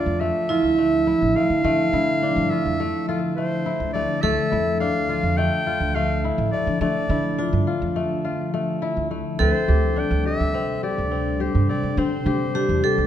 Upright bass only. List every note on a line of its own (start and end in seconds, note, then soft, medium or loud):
0.06 0.31 F2 medium
0.63 1.13 D2 medium
1.22 1.34 A1 medium
1.50 1.62 D3 medium
1.64 1.89 D3 medium
1.93 2.30 D3 medium
2.36 2.49 G2 medium
2.66 2.90 F2 medium
3.80 4.04 D2 medium
4.24 4.36 D2 medium
4.53 4.94 F2 medium
4.94 5.19 D2 medium
5.23 5.48 F2 medium
5.80 6.30 D2 medium
6.38 6.50 A1 medium
6.67 6.79 D3 medium
6.81 7.05 D3 loud
7.09 7.46 D3 medium
7.53 7.65 G2 medium
7.82 8.06 F2 medium
8.97 9.21 D2 medium
9.40 9.52 D2 medium
9.68 10.05 D2 medium
10.11 10.35 D2 medium
10.40 10.64 D2 medium
10.98 11.47 D2 medium
11.55 11.67 G2 medium
11.83 11.95 D3 medium
11.97 12.22 D3 medium
12.26 12.63 D3 medium
12.69 12.81 E2 medium
12.98 13.07 D2 medium